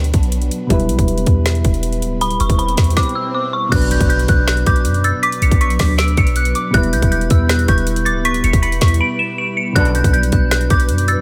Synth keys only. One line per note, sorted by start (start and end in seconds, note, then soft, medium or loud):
0.00 0.65 B2 medium
0.00 0.66 F#3 medium
0.00 0.67 D4 medium
0.00 0.68 B4 medium
0.67 3.67 B2 medium
0.67 3.68 G3 medium
0.71 3.69 E4 medium
0.71 3.70 B4 medium
3.69 6.69 B2 medium
3.69 6.70 F#3 medium
3.73 6.71 D4 medium
3.73 6.72 B4 medium
6.71 9.70 B2 medium
6.71 9.71 G3 medium
6.75 9.72 E4 medium
6.75 9.74 B4 medium
9.73 11.21 B2 medium
9.73 11.21 F#3 medium
9.77 11.21 D4 medium
9.77 11.21 B4 medium